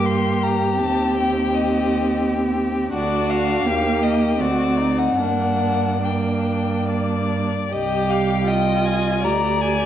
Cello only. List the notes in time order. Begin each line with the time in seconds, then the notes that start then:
Already playing: G2
0.80 D#2
2.95 D2
3.65 D#2
4.39 D2
5.18 G2
7.72 C2
9.23 D2